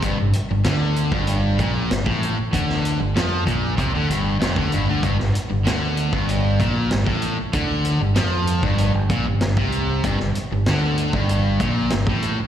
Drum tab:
HH |x-x-x-x-x-x-x-x-|x-x-x-x-x-x-x-x-|x-x-x-x-x-x-x-x-|x-x-x-x-x-x-x-x-|
SD |----o-------o---|-o--o-------o---|-o--o-------o---|----o-------o---|
BD |o------o--o--o--|o-----o-o----o--|o------o--o--o--|o------o--o--o--|

HH |x-x-x-x-x-x-x-x-|
SD |-o--o-------o---|
BD |o------o--o--o--|